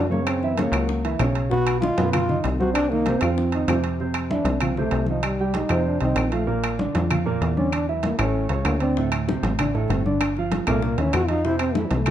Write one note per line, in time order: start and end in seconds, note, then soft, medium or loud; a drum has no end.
0.00 0.68 F#2 medium
0.10 0.36 C#3 medium
0.10 0.27 A#3 medium
0.10 0.37 C#4 medium
0.10 0.37 C#5 medium
0.10 high conga medium
0.25 0.58 C4 loud
0.25 high bongo medium
0.25 high conga soft
0.25 high timbale loud
0.25 claves medium
0.43 0.56 E3 medium
0.43 0.56 E4 medium
0.43 0.56 E5 medium
0.43 high bongo soft
0.43 high conga soft
0.56 0.71 C#3 medium
0.56 1.19 A#3 medium
0.56 0.71 C#4 medium
0.56 0.71 C#5 medium
0.56 high bongo medium
0.56 high conga medium
0.56 high timbale medium
0.72 1.16 C#2 loud
0.72 1.00 F#3 medium
0.72 0.99 F#4 medium
0.72 1.00 F#5 medium
0.72 high conga soft
0.72 high timbale medium
0.72 claves medium
0.89 high bongo medium
0.89 high conga soft
1.05 1.17 E3 medium
1.05 1.18 E4 medium
1.05 1.18 E5 medium
1.05 high bongo soft
1.05 high conga soft
1.05 high timbale medium
1.19 1.92 B1 medium
1.19 1.46 C#3 medium
1.19 1.46 C#4 medium
1.19 1.46 C#5 medium
1.19 high bongo soft
1.19 low bongo medium
1.19 high conga soft
1.19 high timbale medium
1.19 low timbale medium
1.19 claves medium
1.35 high conga soft
1.35 high timbale medium
1.50 1.77 B2 medium
1.50 1.77 B3 medium
1.50 1.80 F#4 loud
1.50 1.77 B4 medium
1.50 high bongo medium
1.50 high conga soft
1.67 high bongo soft
1.67 high conga soft
1.67 high timbale loud
1.67 claves medium
1.81 1.95 D#3 medium
1.81 1.95 D#4 medium
1.81 2.10 F4 loud
1.81 1.95 D#5 medium
1.81 high bongo medium
1.81 high conga loud
1.98 2.41 F#2 loud
1.98 2.23 B2 medium
1.98 2.23 B3 medium
1.98 2.23 B4 medium
1.98 high bongo soft
1.98 high conga loud
1.98 high timbale medium
2.13 2.42 F4 loud
2.13 high bongo medium
2.13 high conga soft
2.13 low conga medium
2.13 high timbale loud
2.13 claves medium
2.29 2.54 D#3 medium
2.29 2.54 D#4 medium
2.29 2.55 D#5 medium
2.29 high bongo soft
2.29 high conga soft
2.29 low conga medium
2.44 3.17 C2 medium
2.44 high bongo soft
2.44 low bongo medium
2.44 high conga soft
2.44 high timbale medium
2.59 2.85 C3 medium
2.59 2.85 C4 medium
2.59 2.73 F#4 loud
2.59 2.86 C5 medium
2.59 high conga medium
2.73 2.91 D4 loud
2.73 high bongo medium
2.73 high conga soft
2.73 high timbale loud
2.73 claves medium
2.90 3.04 D#3 medium
2.90 3.23 A#3 loud
2.90 3.04 D#4 medium
2.90 3.04 D#5 medium
2.90 high bongo soft
2.90 high conga soft
3.06 3.20 C3 medium
3.06 3.20 C4 medium
3.06 3.20 C5 medium
3.06 high bongo medium
3.06 high conga loud
3.06 high timbale medium
3.21 3.65 F2 medium
3.21 3.48 F3 medium
3.21 3.84 C4 medium
3.21 3.48 F4 medium
3.21 3.48 F5 medium
3.21 high bongo soft
3.21 high conga soft
3.21 high timbale medium
3.21 claves medium
3.37 high bongo medium
3.37 high conga soft
3.52 3.67 D#3 medium
3.52 3.67 D#4 medium
3.52 3.67 D#5 medium
3.52 high bongo soft
3.52 high conga soft
3.52 high timbale medium
3.68 4.40 F2 medium
3.68 3.95 C3 medium
3.68 3.95 C4 medium
3.68 3.95 C5 medium
3.68 high bongo soft
3.68 low bongo medium
3.68 high conga soft
3.68 high timbale loud
3.68 low timbale medium
3.68 claves medium
3.84 high conga soft
3.84 high timbale medium
4.00 4.26 C3 medium
4.00 4.26 C4 medium
4.00 4.26 C5 medium
4.00 high conga soft
4.14 high conga soft
4.14 high timbale loud
4.14 claves medium
4.30 4.56 E3 medium
4.30 4.64 D4 medium
4.30 4.56 E4 medium
4.30 4.56 E5 medium
4.30 high conga loud
4.45 4.89 C2 medium
4.45 high conga medium
4.45 high timbale medium
4.60 4.75 F3 medium
4.60 4.77 C4 medium
4.60 4.75 F4 medium
4.60 4.75 F5 medium
4.60 high conga soft
4.60 low conga medium
4.60 high timbale loud
4.60 claves medium
4.77 5.03 C3 medium
4.77 5.06 A3 medium
4.77 5.03 C4 medium
4.77 5.03 C5 medium
4.77 high conga soft
4.77 low conga medium
4.91 5.65 C2 medium
4.91 high conga soft
4.91 high timbale medium
4.91 low timbale medium
5.07 5.35 D#3 medium
5.07 5.25 F3 medium
5.07 5.35 D#4 medium
5.07 5.35 D#5 medium
5.07 high conga medium
5.23 5.57 G3 medium
5.23 high conga soft
5.23 high timbale loud
5.23 claves medium
5.39 5.65 G3 medium
5.39 5.66 G4 medium
5.39 5.66 G5 medium
5.39 high conga soft
5.54 5.88 D#4 loud
5.54 high conga loud
5.54 high timbale medium
5.69 5.99 F2 loud
5.69 5.96 C3 medium
5.69 5.96 C4 medium
5.69 5.96 C5 medium
5.69 high conga soft
5.69 high timbale medium
5.69 claves medium
5.86 6.01 D4 medium
5.86 high conga soft
6.00 6.15 C2 medium
6.00 6.28 D#3 medium
6.00 6.35 C4 medium
6.00 6.28 D#4 medium
6.00 6.28 D#5 medium
6.00 high conga soft
6.00 high timbale medium
6.16 6.89 A#1 medium
6.16 high conga soft
6.16 high timbale loud
6.16 claves medium
6.32 6.45 F3 medium
6.32 6.50 A3 medium
6.32 6.46 F4 medium
6.32 6.46 F5 medium
6.32 high conga soft
6.32 high timbale medium
6.47 6.73 A#2 medium
6.47 6.73 A#3 medium
6.47 6.80 A#3 medium
6.47 6.73 A#4 medium
6.47 high conga soft
6.64 high conga soft
6.64 high timbale loud
6.64 claves medium
6.79 7.05 D3 medium
6.79 7.05 D4 medium
6.79 7.05 D5 medium
6.79 high conga loud
6.95 7.38 F2 loud
6.95 high conga loud
6.95 high timbale medium
7.11 7.24 F3 medium
7.11 7.24 F4 medium
7.11 7.24 F5 medium
7.11 high conga soft
7.11 low conga medium
7.11 high timbale medium
7.11 claves medium
7.25 7.51 A#2 medium
7.25 7.52 A#3 medium
7.25 7.52 A#4 loud
7.25 high conga soft
7.41 8.14 E2 medium
7.41 high conga soft
7.41 high timbale medium
7.57 7.82 D3 medium
7.57 7.75 C#4 loud
7.57 7.82 D4 medium
7.57 7.83 D5 medium
7.57 high conga medium
7.72 7.89 D4 loud
7.72 high conga soft
7.72 high timbale loud
7.72 claves medium
7.89 8.14 E3 medium
7.89 8.05 F#3 medium
7.89 8.14 E4 medium
7.89 8.14 E5 medium
7.89 high conga soft
8.03 8.19 A#3 medium
8.03 high conga loud
8.03 high timbale medium
8.19 8.48 A1 loud
8.19 8.45 A2 medium
8.19 8.45 A3 medium
8.19 8.48 C#4 medium
8.19 8.45 A4 medium
8.19 high conga soft
8.19 high timbale loud
8.19 claves medium
8.34 high conga soft
8.49 8.64 C#2 medium
8.49 8.76 C#3 medium
8.49 8.76 C#4 medium
8.49 8.76 C#5 medium
8.49 high conga soft
8.49 high timbale medium
8.65 9.37 D2 loud
8.65 8.80 A#3 medium
8.65 high conga soft
8.65 high timbale loud
8.65 low timbale medium
8.65 claves medium
8.80 8.94 D3 medium
8.80 9.10 C4 loud
8.80 8.94 D4 medium
8.80 8.95 D5 medium
8.80 high conga soft
8.80 high timbale medium
8.97 9.23 A2 medium
8.97 9.23 A3 medium
8.97 9.23 A4 medium
8.97 high bongo medium
8.97 high conga soft
9.12 high bongo soft
9.12 high conga soft
9.12 high timbale loud
9.12 claves medium
9.28 9.53 C3 medium
9.28 9.53 C4 medium
9.28 9.54 C5 medium
9.28 high bongo medium
9.28 high conga loud
9.43 9.86 A1 medium
9.43 high bongo soft
9.43 high conga medium
9.43 high timbale medium
9.59 9.72 D3 medium
9.59 9.72 D4 medium
9.59 9.72 D5 medium
9.59 high bongo medium
9.59 high conga soft
9.59 low conga medium
9.59 high timbale loud
9.59 claves medium
9.74 10.00 A2 medium
9.74 10.00 A3 medium
9.74 10.00 A4 medium
9.74 high bongo soft
9.74 high conga soft
9.89 10.62 G1 medium
9.89 10.08 C4 medium
9.89 high bongo soft
9.89 low bongo medium
9.89 high conga soft
9.89 high timbale medium
10.06 10.31 D3 medium
10.06 10.37 D4 medium
10.06 10.31 D4 medium
10.06 10.31 D5 medium
10.06 high conga medium
10.21 high bongo medium
10.21 high conga soft
10.21 high timbale loud
10.21 claves medium
10.36 10.63 F3 medium
10.36 10.63 F4 medium
10.36 10.63 F5 medium
10.36 high bongo soft
10.36 high conga soft
10.52 high bongo medium
10.52 high conga loud
10.52 high timbale medium
10.67 10.96 C2 medium
10.67 10.93 A#2 medium
10.67 10.85 A3 medium
10.67 10.93 A#3 medium
10.67 10.94 A#4 medium
10.67 high bongo soft
10.67 high conga soft
10.67 high timbale medium
10.67 claves medium
10.82 11.00 A#3 medium
10.82 high bongo medium
10.82 high conga soft
10.98 11.13 D#2 medium
10.98 11.25 E3 medium
10.98 11.16 C#4 loud
10.98 11.25 E4 medium
10.98 11.25 E5 medium
10.98 high bongo soft
10.98 high conga soft
10.98 high timbale medium
11.13 11.86 F2 loud
11.13 11.30 F#4 loud
11.13 high bongo soft
11.13 low bongo medium
11.13 high conga soft
11.13 high timbale loud
11.13 claves medium
11.28 11.43 F3 medium
11.28 11.47 D#4 loud
11.28 11.43 F4 medium
11.28 11.43 F5 medium
11.28 high conga soft
11.28 high timbale medium
11.44 11.71 C3 medium
11.44 11.71 C4 medium
11.44 11.58 E4 loud
11.44 11.71 C5 medium
11.44 high bongo medium
11.44 high conga soft
11.59 11.76 C4 loud
11.59 high bongo soft
11.59 high conga soft
11.59 high timbale loud
11.59 claves medium
11.75 12.02 E3 medium
11.75 11.88 A3 medium
11.75 12.02 E4 medium
11.75 12.02 E5 medium
11.75 high bongo medium
11.75 high conga loud
11.86 11.97 F3 medium
11.91 12.11 C2 loud
11.91 high bongo soft
11.91 high conga medium
11.91 high timbale medium
11.96 12.11 A3 medium
12.06 12.11 F3 medium
12.06 12.11 F4 medium
12.06 high bongo medium
12.06 high conga soft
12.06 low conga medium
12.06 high timbale medium
12.06 claves medium